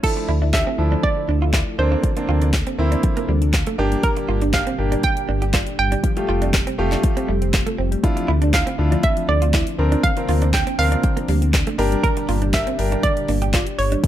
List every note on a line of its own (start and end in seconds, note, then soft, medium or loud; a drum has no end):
0.03 1.77 D3 medium
0.03 0.28 F3 medium
0.03 0.11 F3 medium
0.03 3.75 F3 medium
0.03 1.77 A3 medium
0.03 0.28 D4 medium
0.03 1.77 E4 medium
0.03 0.28 E4 medium
0.03 3.75 A4 medium
0.03 0.55 A4 medium
0.03 kick loud
0.03 crash medium
0.17 0.24 A3 medium
0.17 muted clean electric guitar stroke soft
0.28 0.63 D2 medium
0.28 0.36 D4 medium
0.28 0.40 E4 medium
0.42 0.52 D4 medium
0.42 0.49 E4 medium
0.53 0.66 F3 medium
0.53 0.67 D4 medium
0.53 0.67 G4 medium
0.53 1.00 E5 loud
0.53 kick loud
0.53 snare medium
0.53 clap loud
0.67 0.77 C4 medium
0.78 0.96 D2 medium
0.78 1.28 F3 medium
0.78 1.28 D4 medium
0.78 1.28 E4 medium
0.78 muted clean electric guitar stroke soft
0.92 0.99 A3 medium
0.92 1.02 D4 medium
1.03 1.11 F3 medium
1.03 1.81 D5 loud
1.03 muted clean electric guitar stroke soft
1.03 kick loud
1.17 1.24 A3 medium
1.29 1.63 D2 medium
1.29 1.37 D4 medium
1.29 1.40 D4 medium
1.42 1.49 E4 medium
1.42 1.52 F4 medium
1.53 1.65 E4 medium
1.53 1.61 F4 medium
1.53 kick loud
1.53 snare medium
1.53 clap loud
1.78 1.96 D2 loud
1.78 3.77 C3 medium
1.78 2.09 A#3 medium
1.78 3.77 A#3 medium
1.78 2.09 C4 medium
1.78 6.00 D4 medium
1.78 2.09 D4 medium
1.78 2.75 C5 medium
1.78 muted clean electric guitar stroke soft
1.92 1.99 A#3 medium
1.92 2.02 D4 medium
2.03 2.11 F3 medium
2.03 kick loud
2.03 closed hi-hat medium
2.17 2.47 A#3 medium
2.17 2.24 A#3 medium
2.17 2.48 C4 medium
2.17 2.48 D4 medium
2.17 muted clean electric guitar stroke soft
2.17 closed hi-hat medium
2.29 2.63 D2 medium
2.29 2.36 C4 medium
2.29 2.40 F4 medium
2.42 2.49 D4 medium
2.42 2.52 D4 medium
2.42 closed hi-hat soft
2.53 kick loud
2.53 snare loud
2.53 clap loud
2.53 closed hi-hat medium
2.67 2.77 C4 medium
2.67 closed hi-hat medium
2.78 2.96 D2 medium
2.78 3.28 A#3 medium
2.78 3.28 C4 medium
2.78 3.28 E4 loud
2.78 muted clean electric guitar stroke soft
2.92 2.99 A#3 medium
2.92 3.02 D4 medium
2.92 closed hi-hat medium
3.03 3.11 F3 medium
3.03 muted clean electric guitar stroke soft
3.03 kick loud
3.03 closed hi-hat medium
3.17 3.24 A#3 medium
3.17 3.27 A#3 medium
3.17 closed hi-hat medium
3.28 3.63 D2 medium
3.28 3.40 G3 medium
3.28 3.36 C4 medium
3.42 3.49 D4 medium
3.42 closed hi-hat medium
3.53 3.62 F4 medium
3.53 muted clean electric guitar stroke soft
3.53 kick loud
3.53 snare medium
3.53 clap loud
3.53 closed hi-hat medium
3.67 3.77 A3 medium
3.67 closed hi-hat medium
3.78 3.96 G1 loud
3.78 6.01 A#2 medium
3.78 6.01 D3 medium
3.78 8.00 G3 medium
3.78 4.39 A#3 medium
3.78 3.90 A#3 medium
3.78 4.39 D4 medium
3.78 6.01 G4 medium
3.78 4.39 G4 loud
3.92 3.99 G3 medium
3.92 closed hi-hat medium
4.03 4.12 D3 medium
4.03 4.50 A#4 medium
4.03 kick loud
4.03 closed hi-hat medium
4.17 4.24 G3 medium
4.17 muted clean electric guitar stroke soft
4.17 closed hi-hat medium
4.29 4.63 G1 medium
4.29 4.37 A#3 medium
4.29 4.40 F4 medium
4.42 4.52 D4 medium
4.42 4.49 D4 medium
4.42 closed hi-hat soft
4.53 4.67 A#3 medium
4.53 4.67 D4 medium
4.53 4.67 G4 medium
4.53 5.05 F5 loud
4.53 kick loud
4.53 snare loud
4.53 clap loud
4.53 closed hi-hat medium
4.67 4.77 C4 medium
4.67 closed hi-hat medium
4.78 4.96 G1 medium
4.78 5.28 A#3 medium
4.78 5.28 D4 medium
4.78 5.28 G4 medium
4.78 muted clean electric guitar stroke soft
4.92 4.99 G3 medium
4.92 5.02 D4 medium
4.92 closed hi-hat medium
5.03 5.12 D3 medium
5.03 5.78 G5 loud
5.03 muted clean electric guitar stroke soft
5.03 kick loud
5.03 closed hi-hat medium
5.17 5.24 G3 medium
5.17 closed hi-hat medium
5.29 5.63 G1 medium
5.29 5.37 A#3 medium
5.29 5.40 D4 medium
5.42 5.49 D4 medium
5.42 5.52 G4 medium
5.42 closed hi-hat medium
5.54 5.65 F4 medium
5.54 5.62 D5 medium
5.54 kick loud
5.54 snare loud
5.54 clap loud
5.54 closed hi-hat medium
5.67 closed hi-hat medium
5.79 5.96 G1 loud
5.79 6.75 G5 medium
5.79 muted clean electric guitar stroke soft
5.92 5.99 G3 medium
5.92 6.02 D4 medium
5.92 closed hi-hat medium
6.03 8.02 C3 medium
6.03 6.12 F3 medium
6.03 9.75 A3 medium
6.03 11.75 C4 medium
6.03 6.10 F4 soft
6.03 8.02 G4 medium
6.03 6.10 G4 soft
6.03 kick loud
6.03 closed hi-hat medium
6.17 6.24 G3 medium
6.17 6.47 A3 medium
6.17 6.48 F4 medium
6.17 6.48 G4 medium
6.17 muted clean electric guitar stroke soft
6.17 closed hi-hat medium
6.29 6.63 F1 medium
6.29 6.37 A3 medium
6.29 6.40 F4 medium
6.42 6.49 C4 medium
6.42 6.52 D4 medium
6.42 closed hi-hat soft
6.54 kick loud
6.54 snare loud
6.54 clap loud
6.54 closed hi-hat medium
6.67 6.77 C4 medium
6.67 closed hi-hat medium
6.78 6.96 F1 medium
6.78 7.28 A3 medium
6.78 7.28 F4 medium
6.78 7.28 G4 loud
6.78 muted clean electric guitar stroke soft
6.92 6.99 G3 medium
6.92 7.02 D4 medium
6.92 clap medium
6.92 closed hi-hat medium
7.03 7.12 F3 medium
7.03 muted clean electric guitar stroke soft
7.03 kick loud
7.03 closed hi-hat medium
7.17 7.24 G3 medium
7.17 7.27 C4 medium
7.17 closed hi-hat soft
7.28 7.63 F1 medium
7.28 7.40 G3 medium
7.28 7.37 A3 medium
7.42 7.49 C4 medium
7.42 closed hi-hat medium
7.53 7.61 F4 medium
7.53 muted clean electric guitar stroke soft
7.53 kick loud
7.53 snare medium
7.53 clap loud
7.53 closed hi-hat medium
7.67 7.77 A3 medium
7.67 closed hi-hat medium
7.78 7.96 F1 loud
7.78 7.90 C4 medium
7.92 7.99 G3 medium
7.92 closed hi-hat medium
8.03 9.77 D3 medium
8.03 8.12 E3 medium
8.03 11.75 F3 medium
8.03 8.28 D4 medium
8.03 9.77 D4 medium
8.03 8.28 E4 medium
8.03 8.29 F4 medium
8.03 kick loud
8.03 closed hi-hat medium
8.17 8.24 F3 medium
8.17 muted clean electric guitar stroke soft
8.17 closed hi-hat soft
8.28 8.63 D2 medium
8.28 8.36 A3 medium
8.28 8.40 E4 medium
8.42 8.52 D4 medium
8.42 8.49 D4 medium
8.42 closed hi-hat medium
8.53 8.67 D4 medium
8.53 8.67 E4 medium
8.53 8.67 F4 medium
8.53 9.05 F5 medium
8.53 kick loud
8.53 snare loud
8.53 clap loud
8.53 closed hi-hat medium
8.67 8.77 C4 medium
8.67 closed hi-hat medium
8.78 8.96 D2 medium
8.78 9.28 D4 medium
8.78 9.28 E4 medium
8.78 9.28 F4 medium
8.78 muted clean electric guitar stroke soft
8.92 8.99 F3 medium
8.92 9.02 D4 medium
8.92 closed hi-hat medium
9.03 9.27 E5 loud
9.03 muted clean electric guitar stroke soft
9.03 kick loud
9.03 closed hi-hat medium
9.17 9.24 F3 medium
9.17 closed hi-hat medium
9.29 9.63 D2 medium
9.29 9.37 A3 medium
9.29 9.40 D4 medium
9.29 10.06 D5 medium
9.42 9.49 D4 medium
9.42 9.52 F4 medium
9.42 closed hi-hat medium
9.53 9.61 E4 medium
9.53 9.65 E4 medium
9.53 kick loud
9.53 snare loud
9.53 clap loud
9.53 closed hi-hat medium
9.67 closed hi-hat medium
9.78 9.96 D2 loud
9.78 11.77 C3 medium
9.78 11.77 A#3 medium
9.78 10.09 C4 medium
9.78 14.00 D4 medium
9.78 10.09 D4 medium
9.78 10.09 A#4 medium
9.78 muted clean electric guitar stroke soft
9.92 9.99 F3 medium
9.92 10.02 D4 medium
9.92 closed hi-hat medium
10.03 10.11 D3 medium
10.03 10.55 F5 loud
10.03 kick loud
10.03 closed hi-hat medium
10.17 10.24 F3 medium
10.17 10.47 C4 medium
10.17 10.48 D4 medium
10.17 10.48 A#4 medium
10.17 muted clean electric guitar stroke soft
10.17 closed hi-hat medium
10.28 10.63 D2 medium
10.28 10.36 A#3 medium
10.28 10.40 F4 medium
10.28 open hi-hat medium
10.42 10.49 C4 medium
10.42 10.52 D4 medium
10.42 closed hi-hat soft
10.54 10.77 G5 loud
10.54 kick loud
10.54 snare medium
10.54 clap loud
10.54 closed hi-hat medium
10.67 10.77 C4 medium
10.67 closed hi-hat medium
10.78 10.96 D2 loud
10.78 11.28 C4 medium
10.78 11.28 D4 medium
10.78 11.28 A#4 medium
10.78 11.75 F5 loud
10.78 muted clean electric guitar stroke soft
10.78 open hi-hat medium
10.92 10.99 F3 medium
10.92 11.02 D4 medium
10.92 closed hi-hat medium
11.03 11.12 D3 medium
11.03 muted clean electric guitar stroke soft
11.03 kick loud
11.03 closed hi-hat medium
11.17 11.24 F3 medium
11.17 11.27 A#3 medium
11.17 closed hi-hat medium
11.28 11.63 D2 medium
11.28 11.40 G3 medium
11.28 11.37 A#3 medium
11.28 open hi-hat medium
11.42 11.49 C4 medium
11.42 closed hi-hat medium
11.54 11.62 D4 medium
11.54 muted clean electric guitar stroke soft
11.54 kick loud
11.54 snare medium
11.54 clap loud
11.54 closed hi-hat medium
11.67 11.77 A3 medium
11.67 closed hi-hat medium
11.78 11.96 G1 loud
11.78 14.01 A#2 medium
11.78 14.01 D3 medium
11.78 14.01 G3 medium
11.78 11.90 A#3 medium
11.78 12.39 D4 loud
11.78 12.39 G4 medium
11.78 14.01 G4 medium
11.78 12.39 A#4 loud
11.78 open hi-hat medium
11.92 11.99 G3 medium
11.92 closed hi-hat medium
12.03 12.12 D3 loud
12.03 12.50 A#4 loud
12.03 kick loud
12.03 closed hi-hat medium
12.17 12.24 G3 medium
12.17 muted clean electric guitar stroke soft
12.17 closed hi-hat medium
12.29 12.63 G1 medium
12.29 12.37 A#3 medium
12.29 12.40 F4 medium
12.29 open hi-hat medium
12.42 12.49 D4 medium
12.42 12.52 D4 medium
12.42 closed hi-hat medium
12.53 12.67 D4 medium
12.53 12.67 G4 medium
12.53 12.67 A#4 medium
12.53 13.05 E5 loud
12.53 kick loud
12.53 snare loud
12.53 clap loud
12.53 closed hi-hat medium
12.67 12.77 C4 medium
12.67 closed hi-hat medium
12.78 12.96 G1 loud
12.78 13.28 D4 medium
12.78 13.28 G4 medium
12.78 13.28 A#4 medium
12.78 muted clean electric guitar stroke soft
12.78 open hi-hat medium
12.92 12.99 G3 medium
12.92 13.02 D4 medium
12.92 closed hi-hat medium
13.03 13.12 D3 medium
13.03 13.74 D5 loud
13.03 muted clean electric guitar stroke soft
13.03 kick loud
13.03 closed hi-hat medium
13.17 13.24 G3 medium
13.17 closed hi-hat medium
13.28 13.63 G1 medium
13.28 13.37 A#3 medium
13.28 13.40 D4 medium
13.28 open hi-hat medium
13.42 13.49 D4 medium
13.42 13.52 G4 medium
13.42 closed hi-hat medium
13.54 13.65 F4 medium
13.54 13.61 D5 loud
13.54 kick loud
13.54 snare loud
13.54 clap loud
13.54 closed hi-hat medium
13.67 closed hi-hat medium
13.79 13.96 G1 loud
13.79 14.07 C#5 medium
13.79 muted clean electric guitar stroke soft
13.79 open hi-hat medium
13.92 13.99 G3 medium
13.92 14.02 D4 medium
13.92 closed hi-hat medium
14.03 14.07 A2 medium
14.03 14.07 C#3 medium
14.03 14.07 E3 medium
14.03 14.07 C#4 medium
14.03 14.07 E4 soft
14.03 14.07 E4 medium
14.03 14.07 A4 soft
14.03 kick loud
14.03 closed hi-hat medium